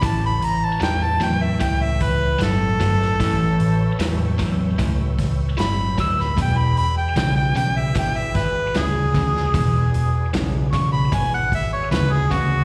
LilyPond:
<<
  \new Staff \with { instrumentName = "Harmonica" } { \time 4/4 \key e \mixolydian \tempo 4 = 76 a''16 b''16 ais''16 a''16 g''16 a''16 g''16 e''16 g''16 e''16 b'8 a'4~ | a'4 r2 b''8 e'''16 b''16 | g''16 b''16 b''16 g''16 g''16 g''16 g''16 e''16 g''16 e''16 b'8 gis'4~ | gis'4 r8 cis'''16 b''16 gis''16 fis''16 e''16 cis''16 b'16 gis'16 fis'8 | }
  \new Staff \with { instrumentName = "Tonewheel organ" } { \time 4/4 \key e \mixolydian <e' b' cis''>1 | <b' cis'' e'' g''>1 | <fis' gis' b' d''>1 | <fis' gis' b' d''>1 | }
  \new Staff \with { instrumentName = "Distorted electric guitar" } { \clef bass \time 4/4 \key e \mixolydian <a, e>4 <a, fis>8 <a, fis>8 <a, e>4 <a, fis>8 <a, fis>8 | <a, e>4 <a, fis>8 <a, fis>8 <a, e>4 <a, fis>8 <a, fis>8 | <e, b,>4 <e, cis>8 <e, cis>8 <e, b,>4 <e, cis>8 <e, cis>8 | <e, b,>4 <e, cis>8 <e, cis>8 <e, b,>4 <e, cis>8 <e, cis>8 | }
  \new Staff \with { instrumentName = "Picked electric bass" } { \clef bass \time 4/4 \key e \mixolydian a,,8 a,,8 e,8 e,8 cis,8 cis,8 g,,8 g,,8 | a,,8 a,,8 e,8 e,8 cis,8 cis,8 g,,8 d,8 | e,,8 e,,8 b,,8 b,,8 gis,,8 gis,,8 d,8 d,8 | e,,8 e,,8 b,,8 b,,8 gis,,8 gis,,8 d,8 d,8 | }
  \new DrumStaff \with { instrumentName = "Drums" } \drummode { \time 4/4 <hho bd>8 hho8 <hho sn>8 hho8 <hho bd>8 <hho bd>8 <hho sn>8 <hho bd>16 sn16 | <hho bd>8 hho8 <hho sn>8 <hho bd>8 <hho bd>8 <hho bd sn>8 <hho sn>8 <hho bd>16 sn16 | <hho bd>8 hho8 <hho sn>8 hho8 <hho bd>8 <hho bd sn>8 <hho sn>8 <hho bd>16 sn16 | <hho bd>8 hho8 <hho sn>8 <hho bd>8 <hho bd>8 <hho bd>8 <hho sn>8 <hho bd>8 | }
>>